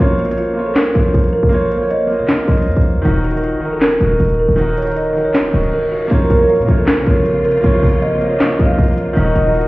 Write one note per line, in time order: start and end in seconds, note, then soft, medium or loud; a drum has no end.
0.00 0.91 A#1 loud
0.00 0.20 A#3 medium
0.00 0.17 C#4 loud
0.00 0.21 F4 medium
0.00 0.22 C5 medium
0.00 0.23 C#5 loud
0.19 0.37 F#4 medium
0.19 closed hi-hat medium
0.25 0.49 A#3 medium
0.25 0.50 F4 medium
0.25 closed hi-hat medium
0.29 0.51 C5 medium
0.29 0.52 C#5 medium
0.29 closed hi-hat medium
0.38 0.65 F4 medium
0.38 closed hi-hat medium
0.54 0.85 A#3 medium
0.54 0.86 F4 medium
0.54 0.87 C5 medium
0.59 0.87 C#5 medium
0.66 0.75 A4 medium
0.76 1.30 A#4 medium
0.76 snare loud
0.76 clap medium
0.76 closed hi-hat medium
0.93 1.13 A#1 loud
0.93 1.38 A#3 medium
0.93 1.39 F4 medium
0.93 1.40 C5 medium
0.93 closed hi-hat medium
0.98 1.41 C#5 medium
1.14 1.42 A#1 loud
1.14 closed hi-hat medium
1.19 closed hi-hat medium
1.24 closed hi-hat medium
1.28 closed hi-hat soft
1.33 1.51 A#4 medium
1.43 2.21 A#1 loud
1.49 1.73 A#3 loud
1.49 1.74 F4 medium
1.49 1.70 C5 medium
1.49 1.75 C5 medium
1.49 closed hi-hat medium
1.54 1.76 C#5 loud
1.71 1.89 C#5 medium
1.71 closed hi-hat medium
1.77 2.01 A#3 medium
1.77 2.02 F4 medium
1.77 2.03 C5 medium
1.83 2.04 C#5 medium
1.90 2.18 D#5 medium
1.90 closed hi-hat medium
2.07 2.38 A#3 medium
2.07 2.39 F4 medium
2.07 2.40 C5 medium
2.07 open hi-hat soft
2.13 2.41 D#5 medium
2.19 2.35 C#3 loud
2.19 2.46 C#5 medium
2.28 snare loud
2.28 clap medium
2.28 closed hi-hat medium
2.34 2.47 A#1 medium
2.45 2.68 A#1 loud
2.45 2.91 A#3 medium
2.45 2.92 F4 medium
2.45 3.01 C5 medium
2.45 2.93 C5 medium
2.45 closed hi-hat soft
2.51 2.94 D#5 medium
2.51 closed hi-hat medium
2.57 closed hi-hat medium
2.62 closed hi-hat medium
2.67 2.76 F2 loud
2.67 closed hi-hat soft
2.72 closed hi-hat medium
2.76 2.97 A#1 loud
2.76 closed hi-hat medium
2.81 closed hi-hat medium
2.96 3.04 F2 loud
3.02 3.54 D#1 loud
3.02 3.26 D#3 loud
3.02 3.26 D#4 medium
3.02 3.23 D#4 loud
3.02 3.27 F#4 medium
3.02 closed hi-hat medium
3.07 3.28 A#4 loud
3.24 3.42 F#4 medium
3.24 closed hi-hat medium
3.31 3.55 D#3 medium
3.31 3.56 D#4 medium
3.31 closed hi-hat medium
3.35 3.57 F#4 medium
3.35 3.58 A#4 medium
3.35 closed hi-hat medium
3.43 3.70 F4 medium
3.43 closed hi-hat medium
3.53 3.78 A#1 loud
3.60 3.91 D#3 medium
3.60 3.91 D#4 medium
3.60 3.92 F#4 medium
3.65 3.93 A#4 medium
3.72 3.81 A4 medium
3.77 4.00 D#1 loud
3.81 4.35 A#4 medium
3.81 snare loud
3.81 clap medium
3.81 closed hi-hat medium
3.98 4.19 D#1 loud
3.98 4.44 D#3 medium
3.98 4.45 D#4 medium
3.98 4.46 F#4 medium
3.98 closed hi-hat medium
4.04 4.46 A#4 medium
4.20 4.47 D#1 loud
4.20 closed hi-hat medium
4.25 closed hi-hat medium
4.29 closed hi-hat medium
4.34 closed hi-hat soft
4.39 4.57 A#4 medium
4.49 5.26 D#1 loud
4.56 4.79 D#3 loud
4.56 4.80 D#4 medium
4.56 4.81 F#4 medium
4.56 4.76 C5 loud
4.56 closed hi-hat medium
4.61 4.82 A#4 loud
4.77 4.95 C#5 medium
4.77 closed hi-hat medium
4.82 5.08 D#3 medium
4.82 5.08 D#4 medium
4.82 closed hi-hat medium
4.87 5.09 F#4 medium
4.87 5.10 A#4 medium
4.87 closed hi-hat medium
4.92 closed hi-hat soft
4.96 5.23 D#5 medium
4.96 closed hi-hat medium
5.13 5.44 D#3 medium
5.13 5.44 D#4 medium
5.13 5.45 F#4 medium
5.13 open hi-hat soft
5.18 5.46 A#4 medium
5.25 5.41 A#1 loud
5.25 5.52 C#5 medium
5.34 snare loud
5.34 clap medium
5.34 closed hi-hat medium
5.34 reverse cymbal medium
5.39 5.53 D#1 loud
5.51 5.72 C#1 loud
5.51 5.97 D#3 medium
5.51 5.98 D#4 medium
5.51 5.98 F#4 medium
5.51 5.71 C5 medium
5.51 closed hi-hat soft
5.57 5.99 A#4 medium
5.63 closed hi-hat medium
5.73 5.90 A#4 medium
5.92 6.09 F#4 medium
6.08 6.29 A#1 loud
6.08 9.14 C3 medium
6.08 9.14 C#3 medium
6.08 6.32 A#3 loud
6.08 9.68 A#3 medium
6.08 6.29 C#4 loud
6.08 6.32 F4 medium
6.08 9.14 F4 loud
6.08 6.83 A#4 loud
6.08 6.33 C5 medium
6.08 closed hi-hat medium
6.13 6.34 C#5 loud
6.30 6.60 A#1 loud
6.30 6.48 F#4 medium
6.30 closed hi-hat loud
6.37 6.61 A#3 medium
6.37 6.62 F4 medium
6.37 6.62 C5 medium
6.43 6.63 C#5 medium
6.49 6.76 F4 medium
6.49 closed hi-hat medium
6.56 6.68 A#2 loud
6.56 closed hi-hat medium
6.62 6.96 A#3 medium
6.62 closed hi-hat medium
6.67 6.87 A#1 loud
6.67 6.97 F4 medium
6.67 6.98 C5 medium
6.67 6.99 C#5 medium
6.67 closed hi-hat medium
6.78 6.87 A4 medium
6.87 7.41 A#4 medium
6.87 snare loud
6.87 clap medium
6.87 closed hi-hat medium
7.04 7.62 A#1 loud
7.04 7.50 A#3 medium
7.04 7.51 F4 medium
7.04 7.52 C5 medium
7.04 closed hi-hat medium
7.10 7.52 C#5 medium
7.26 closed hi-hat medium
7.44 7.62 A#4 medium
7.44 closed hi-hat medium
7.51 closed hi-hat medium
7.58 7.84 A#3 loud
7.58 closed hi-hat medium
7.62 7.82 A#1 loud
7.62 7.85 F4 medium
7.62 7.82 C5 medium
7.62 7.86 C5 medium
7.62 7.87 C#5 loud
7.62 closed hi-hat medium
7.83 8.56 A#1 loud
7.83 8.00 C#5 medium
7.83 open hi-hat loud
7.89 8.13 A#3 medium
7.89 8.14 F4 medium
7.89 8.15 C5 medium
7.94 8.16 C#5 medium
8.02 8.29 D#5 medium
8.02 closed hi-hat medium
8.19 8.50 A#3 medium
8.19 8.50 F4 medium
8.19 8.51 C5 medium
8.19 closed hi-hat medium
8.24 8.52 D#5 medium
8.31 8.58 C#5 medium
8.40 8.58 C#5 medium
8.40 snare loud
8.40 clap loud
8.40 closed hi-hat medium
8.57 8.78 A#1 loud
8.57 9.02 A#3 medium
8.57 9.03 F4 medium
8.57 9.13 C5 medium
8.57 9.04 C5 medium
8.57 8.77 F5 medium
8.57 closed hi-hat medium
8.62 9.05 D#5 medium
8.78 9.15 A#1 loud
8.78 closed hi-hat medium
8.83 closed hi-hat medium
8.88 closed hi-hat medium
8.93 closed hi-hat medium
8.98 closed hi-hat medium
9.13 9.35 D#1 loud
9.13 9.37 D#3 loud
9.13 9.68 D#3 medium
9.13 9.68 F#3 medium
9.13 9.38 D#4 medium
9.13 9.34 D#4 loud
9.13 9.68 F#4 medium
9.13 9.39 F#4 medium
9.13 9.68 D#5 loud
9.13 closed hi-hat medium
9.19 9.40 A#4 loud
9.36 9.68 D#1 loud
9.36 9.53 F#4 medium
9.36 closed hi-hat loud
9.43 9.66 D#3 medium
9.43 9.67 D#4 medium
9.43 9.68 F#4 medium
9.48 9.68 A#4 medium
9.55 9.68 F4 medium
9.55 closed hi-hat medium
9.61 closed hi-hat medium